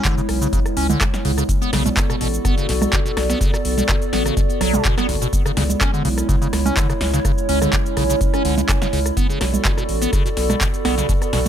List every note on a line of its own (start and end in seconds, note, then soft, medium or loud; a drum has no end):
0.00 1.45 C#3 medium
0.00 1.45 G#3 medium
0.00 7.21 B3 medium
0.00 1.45 E4 medium
0.00 2.47 E4 medium
0.00 1.49 C#5 medium
0.00 5.33 B5 medium
0.05 0.15 D3 medium
0.05 kick loud
0.05 clap loud
0.05 closed hi-hat medium
0.05 cabasa medium
0.18 0.21 C#3 medium
0.18 cabasa soft
0.29 0.47 B1 loud
0.29 cross-stick medium
0.29 open hi-hat loud
0.42 0.48 C#3 medium
0.42 closed hi-hat medium
0.42 cabasa medium
0.53 0.60 C#3 medium
0.53 kick loud
0.53 closed hi-hat medium
0.53 cabasa medium
0.66 cross-stick medium
0.66 closed hi-hat soft
0.66 cabasa soft
0.77 0.95 C#2 medium
0.77 0.87 C#4 medium
0.77 open hi-hat loud
0.90 0.99 D3 medium
0.90 closed hi-hat medium
0.90 low conga loud
0.90 cabasa medium
1.01 1.05 C#3 medium
1.01 kick loud
1.01 cross-stick medium
1.01 clap loud
1.01 closed hi-hat medium
1.01 cabasa medium
1.14 snare medium
1.14 closed hi-hat soft
1.14 cabasa soft
1.25 1.43 C#2 medium
1.25 1.32 C#3 medium
1.25 open hi-hat medium
1.38 1.44 C#3 medium
1.38 cross-stick medium
1.38 closed hi-hat medium
1.38 cabasa medium
1.49 5.29 F#4 medium
1.49 5.29 A4 medium
1.49 5.33 A4 medium
1.49 5.29 D5 medium
1.49 kick loud
1.49 closed hi-hat medium
1.49 cabasa medium
1.62 1.71 B3 medium
1.62 cabasa soft
1.73 1.91 B1 loud
1.73 1.83 C#3 medium
1.73 cross-stick medium
1.73 snare medium
1.73 open hi-hat loud
1.86 1.89 B2 medium
1.86 closed hi-hat medium
1.86 low conga medium
1.86 cabasa medium
1.97 kick loud
1.97 clap loud
1.97 closed hi-hat medium
1.97 cabasa medium
2.10 2.16 B2 medium
2.10 cross-stick medium
2.10 cabasa soft
2.21 2.39 A1 loud
2.21 2.28 B2 medium
2.21 open hi-hat loud
2.29 5.33 D5 medium
2.34 closed hi-hat medium
2.34 cabasa medium
2.45 2.55 B3 medium
2.45 kick loud
2.45 cross-stick medium
2.45 closed hi-hat medium
2.45 cabasa medium
2.58 2.67 C#3 medium
2.58 closed hi-hat soft
2.58 cabasa soft
2.69 2.87 B1 loud
2.69 2.73 B2 medium
2.69 snare soft
2.69 open hi-hat loud
2.82 cross-stick medium
2.82 closed hi-hat medium
2.82 low conga loud
2.82 cabasa medium
2.93 3.00 B2 medium
2.93 kick loud
2.93 clap loud
2.93 closed hi-hat medium
2.93 cabasa medium
3.06 3.12 B2 medium
3.06 closed hi-hat soft
3.06 cabasa soft
3.17 3.35 B1 medium
3.17 cross-stick medium
3.17 snare medium
3.17 open hi-hat loud
3.30 3.39 B3 medium
3.30 snare soft
3.30 closed hi-hat medium
3.30 cabasa medium
3.41 3.51 C#3 medium
3.41 kick loud
3.41 closed hi-hat medium
3.41 cabasa medium
3.53 3.57 B2 medium
3.53 cross-stick medium
3.53 cabasa soft
3.65 3.83 B1 loud
3.65 open hi-hat loud
3.78 3.84 B2 medium
3.78 closed hi-hat medium
3.78 low conga medium
3.78 cabasa medium
3.89 3.96 B2 medium
3.89 kick loud
3.89 cross-stick medium
3.89 clap loud
3.89 closed hi-hat medium
3.89 cabasa medium
4.02 closed hi-hat soft
4.02 cabasa soft
4.13 4.31 A1 loud
4.13 4.23 B3 medium
4.13 snare medium
4.13 open hi-hat loud
4.26 4.35 C#3 medium
4.26 cross-stick medium
4.26 closed hi-hat medium
4.26 cabasa medium
4.37 4.41 B2 medium
4.37 kick loud
4.37 closed hi-hat medium
4.37 cabasa medium
4.50 closed hi-hat soft
4.50 cabasa soft
4.61 4.79 B1 medium
4.61 4.75 F#3 loud
4.61 cross-stick medium
4.61 snare soft
4.61 open hi-hat loud
4.74 4.83 B2 loud
4.74 closed hi-hat medium
4.74 low conga medium
4.74 cabasa medium
4.85 4.95 B2 medium
4.85 kick loud
4.85 clap loud
4.85 closed hi-hat medium
4.85 cabasa medium
4.98 5.07 B3 loud
4.98 cross-stick medium
4.98 snare medium
4.98 closed hi-hat soft
4.98 cabasa soft
5.09 5.27 F#1 loud
5.09 5.16 B1 loud
5.09 open hi-hat loud
5.22 5.28 B2 medium
5.22 closed hi-hat soft
5.22 cabasa medium
5.33 9.13 C#3 medium
5.33 9.13 G#3 medium
5.33 10.13 E4 medium
5.33 9.13 E4 medium
5.33 kick loud
5.33 closed hi-hat medium
5.33 cabasa medium
5.46 5.52 C#3 medium
5.46 9.17 C#5 medium
5.46 cross-stick medium
5.46 cabasa soft
5.57 5.75 C#2 loud
5.57 5.64 C#3 medium
5.57 snare medium
5.57 open hi-hat loud
5.70 closed hi-hat medium
5.70 low conga medium
5.70 cabasa medium
5.81 5.91 C#4 medium
5.81 kick loud
5.81 cross-stick medium
5.81 clap loud
5.81 closed hi-hat medium
5.81 cabasa medium
5.94 6.03 D3 medium
5.94 cabasa soft
6.05 6.23 B1 loud
6.05 6.09 C#3 medium
6.05 open hi-hat loud
6.18 cross-stick medium
6.18 closed hi-hat medium
6.18 cabasa medium
6.29 6.36 C#3 medium
6.29 kick loud
6.29 closed hi-hat medium
6.29 cabasa medium
6.42 6.48 C#3 medium
6.42 closed hi-hat soft
6.42 cabasa soft
6.53 6.71 C#2 medium
6.53 cross-stick medium
6.53 snare soft
6.53 open hi-hat loud
6.66 6.75 C#4 medium
6.66 closed hi-hat soft
6.66 low conga medium
6.66 cabasa medium
6.77 6.87 D3 medium
6.77 kick loud
6.77 clap loud
6.77 closed hi-hat medium
6.77 cabasa medium
6.90 6.93 C#3 medium
6.90 cross-stick medium
6.90 closed hi-hat soft
6.90 cabasa soft
7.01 7.19 C#2 medium
7.01 snare medium
7.01 open hi-hat medium
7.06 11.48 B5 medium
7.14 7.20 C#3 medium
7.14 snare soft
7.14 closed hi-hat medium
7.14 cabasa medium
7.25 7.32 C#3 medium
7.25 9.15 C#4 medium
7.25 kick loud
7.25 cross-stick medium
7.25 closed hi-hat medium
7.25 cabasa medium
7.38 cabasa soft
7.49 7.67 C#2 loud
7.49 7.59 C#4 medium
7.49 open hi-hat loud
7.62 7.71 D3 medium
7.62 cross-stick medium
7.62 closed hi-hat medium
7.62 low conga medium
7.62 cabasa medium
7.73 7.77 C#3 medium
7.73 kick loud
7.73 clap loud
7.73 closed hi-hat medium
7.73 cabasa medium
7.86 cabasa soft
7.97 8.15 B1 loud
7.97 8.04 C#3 medium
7.97 cross-stick medium
7.97 open hi-hat medium
8.10 8.16 C#3 medium
8.10 closed hi-hat medium
8.10 cabasa medium
8.21 kick loud
8.21 closed hi-hat medium
8.21 cabasa medium
8.34 8.43 C#4 medium
8.34 cross-stick medium
8.34 closed hi-hat soft
8.34 cabasa soft
8.45 8.63 C#2 medium
8.45 8.55 D3 medium
8.45 open hi-hat loud
8.58 8.61 C#3 medium
8.58 closed hi-hat medium
8.58 low conga medium
8.58 cabasa medium
8.69 kick loud
8.69 cross-stick medium
8.69 clap loud
8.69 closed hi-hat medium
8.69 cabasa medium
8.82 8.88 C#3 medium
8.82 snare medium
8.82 closed hi-hat soft
8.82 cabasa soft
8.93 9.11 C#2 medium
8.93 9.00 C#3 medium
8.93 open hi-hat medium
9.06 cross-stick medium
9.06 closed hi-hat medium
9.06 cabasa medium
9.17 9.27 B3 medium
9.17 11.48 B3 medium
9.17 11.48 F#4 medium
9.17 11.48 A4 medium
9.17 11.07 A4 medium
9.17 11.48 D5 medium
9.17 kick loud
9.17 closed hi-hat medium
9.17 cabasa medium
9.30 9.39 C#3 medium
9.30 11.48 D5 medium
9.30 cabasa soft
9.41 9.59 B1 loud
9.41 9.45 B2 medium
9.41 cross-stick medium
9.41 snare medium
9.41 open hi-hat loud
9.54 closed hi-hat medium
9.54 low conga medium
9.54 cabasa medium
9.65 9.72 B2 medium
9.65 kick loud
9.65 clap loud
9.65 closed hi-hat medium
9.65 cabasa medium
9.78 9.84 B2 medium
9.78 cross-stick medium
9.78 cabasa soft
9.89 10.07 A1 medium
9.89 open hi-hat medium
10.02 10.11 B3 medium
10.02 closed hi-hat medium
10.02 cabasa medium
10.13 10.23 C#3 medium
10.13 kick loud
10.13 cross-stick medium
10.13 closed hi-hat medium
10.13 cabasa medium
10.26 10.29 B2 medium
10.26 closed hi-hat soft
10.26 cabasa soft
10.37 10.55 B1 medium
10.37 snare soft
10.37 open hi-hat loud
10.50 10.56 B2 medium
10.50 cross-stick medium
10.50 closed hi-hat medium
10.50 low conga medium
10.50 cabasa medium
10.61 10.68 B2 medium
10.61 kick loud
10.61 clap loud
10.61 closed hi-hat medium
10.61 cabasa medium
10.74 closed hi-hat soft
10.74 cabasa soft
10.85 11.03 B1 medium
10.85 10.95 B3 medium
10.85 cross-stick medium
10.85 snare medium
10.85 open hi-hat medium
10.98 11.07 C#3 medium
10.98 snare soft
10.98 closed hi-hat medium
10.98 cabasa medium
11.09 11.13 B2 medium
11.09 11.48 B4 medium
11.09 kick loud
11.09 closed hi-hat medium
11.09 cabasa medium
11.22 cross-stick medium
11.22 closed hi-hat soft
11.22 cabasa soft
11.33 11.48 B1 loud
11.33 11.40 B2 medium
11.33 snare medium
11.33 open hi-hat loud